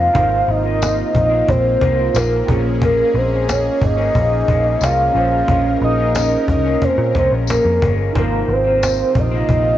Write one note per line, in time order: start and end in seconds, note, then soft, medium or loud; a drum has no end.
0.00 0.12 G#2 medium
0.00 2.45 C3 loud
0.00 0.13 F3 medium
0.00 0.13 A#3 medium
0.00 8.11 A#3 medium
0.00 0.14 C4 medium
0.00 0.10 D#4 medium
0.00 0.11 F4 medium
0.00 2.45 F4 loud
0.00 0.12 A#4 medium
0.00 0.13 C5 medium
0.00 0.52 F5 loud
0.13 0.42 G#1 loud
0.13 0.64 G#2 medium
0.13 0.64 F3 medium
0.13 0.64 A#3 medium
0.13 0.62 C4 medium
0.13 2.43 D#4 medium
0.13 2.44 F4 medium
0.13 2.45 A#4 medium
0.13 cajon bass loud
0.18 2.46 C5 medium
0.32 cajon slap soft
0.48 1.01 G#1 loud
0.48 1.16 D#5 loud
0.48 cajon slap soft
0.63 1.32 F3 soft
0.63 1.31 A#3 soft
0.63 1.28 C4 medium
0.63 cajon slap soft
0.82 cajon slap loud
0.82 tambourine loud
1.15 1.41 A#1 loud
1.15 1.51 D#5 loud
1.15 cajon bass loud
1.30 1.80 F3 soft
1.30 1.81 A#3 medium
1.30 1.81 C4 medium
1.30 cajon slap soft
1.49 1.75 A#1 loud
1.49 2.19 C5 loud
1.49 cajon bass loud
1.66 cajon slap soft
1.80 2.08 C2 medium
1.80 2.13 G#2 medium
1.80 2.14 F3 medium
1.80 2.15 A#3 medium
1.80 2.16 C4 medium
1.80 cajon bass loud
1.99 cajon slap soft
2.14 2.41 A#1 medium
2.14 2.48 G#2 medium
2.14 2.47 F3 medium
2.14 2.49 A#3 medium
2.14 2.49 C4 medium
2.14 2.66 A#4 loud
2.14 cajon slap loud
2.14 tambourine medium
2.45 3.02 A#1 loud
2.45 2.80 A#2 medium
2.45 2.81 F3 medium
2.45 2.53 C4 medium
2.45 8.10 C#4 medium
2.45 5.10 F4 medium
2.45 5.12 G#4 loud
2.45 5.11 G#4 medium
2.45 cajon bass loud
2.50 2.81 G#3 medium
2.50 2.82 C#4 medium
2.50 5.11 C#4 medium
2.50 5.12 A#4 medium
2.66 cajon slap soft
2.81 3.31 A#2 medium
2.81 3.32 F3 medium
2.81 3.31 G#3 medium
2.81 3.29 C#4 medium
2.81 3.19 A#4 loud
2.81 cajon bass loud
2.99 cajon slap soft
3.14 3.68 A#1 loud
3.14 3.53 C5 medium
3.14 cajon slap soft
3.30 4.00 F3 soft
3.30 3.98 G#3 soft
3.30 3.96 C#4 medium
3.30 cajon slap soft
3.49 3.83 C#5 medium
3.49 cajon slap loud
3.49 tambourine medium
3.82 4.08 G#1 medium
3.82 4.86 D#5 loud
3.82 cajon bass loud
3.97 4.47 F3 soft
3.97 4.48 G#3 medium
3.97 4.48 C#4 medium
4.15 4.42 A#1 loud
4.15 cajon bass loud
4.32 cajon slap soft
4.47 4.75 A#1 loud
4.47 4.80 A#2 medium
4.47 4.80 F3 medium
4.47 4.81 G#3 medium
4.47 4.82 C#4 medium
4.47 cajon bass medium
4.66 cajon slap soft
4.81 5.08 C2 loud
4.81 5.12 A#2 medium
4.81 5.14 F3 medium
4.81 5.14 G#3 medium
4.81 5.15 C#4 medium
4.81 5.16 F5 loud
4.81 cajon slap loud
4.81 tambourine medium
5.12 5.42 A#1 medium
5.12 5.46 A#2 medium
5.12 5.47 F3 medium
5.12 5.48 G#3 medium
5.12 7.76 C#4 medium
5.12 7.77 F4 medium
5.12 7.78 G#4 medium
5.12 8.12 A#4 medium
5.12 cajon slap soft
5.16 5.48 C#4 medium
5.16 7.79 C5 medium
5.16 5.79 F5 loud
5.33 cajon slap soft
5.47 5.75 A#1 medium
5.47 5.98 A#2 medium
5.47 5.98 F3 medium
5.47 5.98 G#3 medium
5.47 5.96 C#4 medium
5.47 cajon bass loud
5.64 cajon slap soft
5.81 6.35 A#1 loud
5.81 6.46 D#5 loud
5.81 cajon slap soft
5.97 6.67 F3 soft
5.97 6.66 G#3 soft
5.97 6.63 C#4 medium
5.97 cajon slap soft
6.15 cajon slap loud
6.15 tambourine medium
6.32 cajon slap soft
6.48 6.75 C2 medium
6.48 6.86 D#5 medium
6.48 cajon bass loud
6.64 7.14 F3 medium
6.64 7.15 G#3 medium
6.64 7.15 C#4 medium
6.64 cajon slap soft
6.82 7.16 C5 medium
6.82 cajon bass medium
6.98 7.11 A#2 loud
6.98 cajon slap soft
7.14 7.28 C2 medium
7.14 7.47 A#2 medium
7.14 7.48 F3 medium
7.14 7.49 G#3 medium
7.14 7.49 C#4 medium
7.14 cajon bass medium
7.18 7.32 C5 medium
7.31 7.58 A#1 loud
7.31 cajon slap soft
7.47 7.80 A#2 medium
7.47 7.81 F3 medium
7.47 7.82 G#3 medium
7.47 cajon slap loud
7.47 tambourine medium
7.51 7.82 C#4 medium
7.51 7.97 A#4 medium
7.65 7.78 F2 medium
7.81 8.09 G1 medium
7.81 8.15 A#2 medium
7.81 8.14 F3 medium
7.81 8.15 G#3 medium
7.81 8.16 C#4 medium
7.81 cajon bass loud
8.01 cajon slap soft
8.12 8.42 G#1 medium
8.12 8.65 G#2 medium
8.12 9.78 C3 medium
8.12 8.65 F3 medium
8.12 9.78 A#3 medium
8.12 8.65 A#3 medium
8.12 8.63 C4 medium
8.12 9.78 D#4 medium
8.12 9.78 F4 medium
8.12 9.78 F4 loud
8.12 9.78 A#4 medium
8.12 cajon bass loud
8.17 8.54 A#4 loud
8.17 9.78 C5 medium
8.33 cajon slap soft
8.48 9.02 G#1 loud
8.48 cajon slap soft
8.53 9.21 C5 loud
8.64 9.34 F3 soft
8.64 9.33 A#3 soft
8.64 9.30 C4 medium
8.64 cajon slap soft
8.83 cajon slap loud
8.83 tambourine medium
9.15 9.42 A#1 medium
9.15 9.78 D#5 loud
9.15 cajon bass medium
9.31 9.78 F3 soft
9.31 9.78 A#3 soft
9.31 9.78 C4 medium
9.31 cajon slap soft
9.49 9.75 A#1 loud
9.49 cajon bass medium
9.66 cajon slap soft